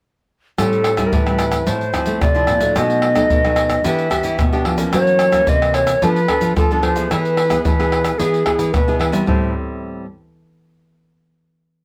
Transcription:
0.58 nylon-string guitar A2 G3 C4 E4, flute A4, pandeiro, tamborim, shaker, surdo
0.73 pandeiro, shaker
0.84 pandeiro, tamborim, shaker
0.97 nylon-string guitar G3 C4 E4, pandeiro, tamborim, shaker, surdo
1.07 flute A#4
1.12 nylon-string guitar A2 E3, flute B4, pandeiro, shaker, surdo
1.26 nylon-string guitar G3 C4 E4, pandeiro, tamborim, shaker
1.39 pandeiro, tamborim, shaker
1.52 pandeiro, tamborim, shaker, surdo
1.66 nylon-string guitar A2 F3 C4 E4, flute C5, pandeiro, shaker, surdo
1.81 pandeiro, shaker
1.93 nylon-string guitar F3 C4 E4, pandeiro, tamborim, shaker, surdo
2.06 nylon-string guitar A3, pandeiro, shaker
2.21 nylon-string guitar A2 C3, flute D5, pandeiro, tamborim, shaker, surdo
2.35 nylon-string guitar F3 C4 E4, pandeiro, shaker
2.47 nylon-string guitar A#2, pandeiro, tamborim, shaker, surdo
2.60 nylon-string guitar F#3 A3 D#4, pandeiro, shaker, surdo
2.76 nylon-string guitar B2, flute D#5, pandeiro, tamborim, shaker, surdo
2.90 pandeiro, shaker
3.02 pandeiro, tamborim
3.15 nylon-string guitar F#3 A3 D#4, pandeiro, tamborim, shaker, surdo
3.30 nylon-string guitar F#2 B2, pandeiro, shaker, surdo
3.45 nylon-string guitar F#3 A3 D#4, pandeiro, tamborim, shaker
3.56 pandeiro, tamborim, shaker
3.69 pandeiro, tamborim, shaker, surdo
3.84 nylon-string guitar E3 B3 D4 G4, flute E5, pandeiro, shaker, surdo
3.99 pandeiro, shaker
4.10 nylon-string guitar B3 D4 G4, pandeiro, tamborim, shaker, surdo
4.23 nylon-string guitar E3, pandeiro, shaker
4.38 nylon-string guitar B2, pandeiro, tamborim, shaker, surdo
4.52 nylon-string guitar B3 D4 G4, pandeiro, shaker
4.65 nylon-string guitar F3, pandeiro, tamborim, surdo
4.78 nylon-string guitar E3 A#3 C#4, pandeiro, shaker, surdo
4.93 nylon-string guitar F#2 F#3, flute C#5, pandeiro, tamborim, shaker, surdo
5.07 pandeiro, shaker
5.19 pandeiro, tamborim, shaker
5.32 nylon-string guitar E3 A#3 C#4, pandeiro, tamborim, shaker, surdo
5.47 nylon-string guitar C3, flute D#5, pandeiro, shaker, surdo
5.62 nylon-string guitar E3 A#3, pandeiro, tamborim, shaker
5.74 flute C#5, pandeiro, tamborim, shaker
5.87 pandeiro, tamborim, shaker, surdo
6.02 nylon-string guitar F3 B3 D4 A4, flute B4, pandeiro, shaker, surdo
6.16 pandeiro, shaker
6.28 nylon-string guitar B3 D4 A4, pandeiro, tamborim, surdo
6.41 nylon-string guitar F3, pandeiro, shaker
6.56 nylon-string guitar F3, flute A4, pandeiro, tamborim, shaker, surdo
6.71 nylon-string guitar B3 D4 A4, pandeiro, shaker
6.82 nylon-string guitar F3, flute C5, pandeiro, tamborim, surdo
6.96 nylon-string guitar B3 E4 G#4, pandeiro, shaker, surdo
7.10 nylon-string guitar E3, flute B4, pandeiro, tamborim, shaker, surdo
7.25 pandeiro, shaker
7.37 pandeiro, tamborim
7.50 nylon-string guitar B3 E4 G#4, pandeiro, tamborim, shaker, surdo
7.65 nylon-string guitar B2 E3, flute B4, pandeiro, shaker, surdo
7.79 nylon-string guitar B3 E4 G#4, pandeiro, tamborim, shaker
7.92 pandeiro, tamborim
8.04 pandeiro, tamborim, shaker, surdo
8.18 nylon-string guitar E3 B3 E4 G#4, flute G#4, pandeiro, shaker, surdo
8.34 pandeiro, shaker
8.46 nylon-string guitar B3 E4 G#4, pandeiro, tamborim, surdo
8.59 nylon-string guitar E3, pandeiro, shaker
8.72 nylon-string guitar B2, flute B4, pandeiro, tamborim, shaker, surdo
8.88 nylon-string guitar B3 E4 G#4, pandeiro, shaker
8.99 nylon-string guitar E3, flute B4, pandeiro, tamborim
9.12 nylon-string guitar G3 C4 E4, pandeiro, shaker, surdo
9.26 nylon-string guitar A2 G3 C4 E4, flute C5, surdo

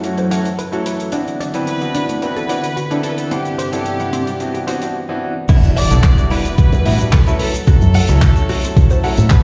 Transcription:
Already playing: string machine F#3 E4 A4, downlifter
0.03 grand piano E3 F#3 A3 C#4 F#4, closed hi-hat
0.18 clean electric guitar C5, closed hi-hat
0.30 grand piano E3 F#3 A3 C#4 F#4, clean electric guitar F#5, closed hi-hat
0.45 closed hi-hat
0.59 clean electric guitar B4, closed hi-hat
0.72 grand piano E3 F#3 A3 C#4 A4, clean electric guitar F#4, closed hi-hat
0.86 clean electric guitar B4, closed hi-hat
1.00 closed hi-hat
1.12 string machine D3 F#5 B5, grand piano E3 B3 C4 D4 F#4, clean electric guitar D4, closed hi-hat
1.28 closed hi-hat
1.40 clean electric guitar D5, closed hi-hat
1.54 grand piano E3 B3 C4 D4 B4, closed hi-hat
1.67 violin section B4, closed hi-hat
1.81 grand piano E3 B3 C4 D4 F#4, closed hi-hat
1.95 clean electric guitar D4, closed hi-hat
2.09 clean electric guitar A3, closed hi-hat
2.21 grand piano E3 B3 C4 D4 F#4, violin section B4, closed hi-hat
2.36 clean electric guitar A4, closed hi-hat
2.48 grand piano E3 B3 C4 D4 F#4, clean electric guitar D5, closed hi-hat
2.64 closed hi-hat
2.77 clean electric guitar F#4, closed hi-hat
2.90 grand piano E3 B3 C4 D4 A4, clean electric guitar D4, closed hi-hat
3.03 clean electric guitar F#4, violin section A4, closed hi-hat
3.11 violin section B4
3.18 violin section A4, closed hi-hat
3.30 string machine C3 G3 D5, grand piano E3 C4 D4 B4 F#5, clean electric guitar C4, violin section G4, closed hi-hat
3.45 closed hi-hat
3.58 clean electric guitar C5, closed hi-hat
3.72 grand piano E3 B3 C4 D4 A4, closed hi-hat
3.85 closed hi-hat
3.99 grand piano E3 C4 D4 F#5, closed hi-hat
4.13 clean electric guitar C4, closed hi-hat
4.27 clean electric guitar G3, closed hi-hat
4.40 grand piano E3 B3 C4 D4 F#4, closed hi-hat
4.54 clean electric guitar G4, closed hi-hat
4.67 grand piano E3 B3 C4 D4 F#4, clean electric guitar C5, closed hi-hat
4.82 grand piano E3 B3 C4 D4 F#4, closed hi-hat
5.09 grand piano E3 B3 C4 D4 F#4
5.49 fingered electric bass E2, grand piano E3 G3 B3 D4 F#4, string machine G3 F#5 D6, clean electric guitar E4, kick, closed hi-hat, crash, impact, shaker
5.63 closed hi-hat, shaker
5.76 violin section D5, clean electric guitar E5, open hi-hat
5.90 fingered electric bass B1, grand piano E3 G3 B3 D4 A4, closed hi-hat, shaker
6.03 kick, clap, closed hi-hat, shaker
6.17 grand piano E3 G3 B3 D4 F#4, closed hi-hat, shaker
6.30 clean electric guitar E4, violin section B4, open hi-hat
6.45 clean electric guitar B3, closed hi-hat, shaker
6.58 grand piano E3 G3 B3 D4 F#4, muted fingered electric bass stroke, kick, closed hi-hat, shaker
6.72 fingered electric bass E2, clean electric guitar B4, closed hi-hat, shaker
6.85 fingered electric bass A2, grand piano E3 G3 B3 D4 F#4, clean electric guitar E5, open hi-hat
6.99 grand piano E3 G3 B3 D4 F#4, closed hi-hat, shaker
7.12 clean electric guitar A4, kick, clap, closed hi-hat, shaker
7.26 grand piano F#3 A3 C#4 E4 A4, clean electric guitar E4, closed hi-hat, shaker
7.39 violin section A4, string machine A4 E6, clean electric guitar B4, open hi-hat
7.54 closed hi-hat, shaker
7.67 grand piano F#3 A3 C#4 E4 A4, clean electric guitar F#4, violin section A4, muted fingered electric bass stroke, kick, closed hi-hat, shaker
7.81 fingered electric bass F#2, closed hi-hat, shaker
7.94 clean electric guitar F#5, open hi-hat
8.08 fingered electric bass C#2, grand piano F#3 A3 C#4 E4 C#5, closed hi-hat, shaker
8.22 kick, clap, closed hi-hat, shaker
8.35 grand piano F#3 A3 C#4 E4 A4, closed hi-hat, shaker
8.49 clean electric guitar F#4, open hi-hat
8.64 clean electric guitar C4, closed hi-hat, shaker
8.76 grand piano F#3 A3 C#4 E4 A4, kick, closed hi-hat, shaker
8.90 clean electric guitar C5, closed hi-hat, shaker
9.03 grand piano F#3 A3 C#4 E4 A4, clean electric guitar F#5, open hi-hat
9.17 fingered electric bass A2, grand piano F#3 A3 C#4 E4 A4, closed hi-hat, shaker
9.30 clean electric guitar B4, kick, clap, closed hi-hat, shaker

